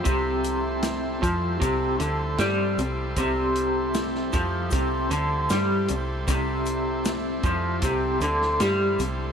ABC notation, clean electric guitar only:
X:1
M:4/4
L:1/8
Q:1/4=77
K:C
V:1 name="Clean electric guitar" clef=bass
C,3 F, C, D, G, C, | C,3 F, C, D, G, C, | C,3 F, C, D, G, C, |]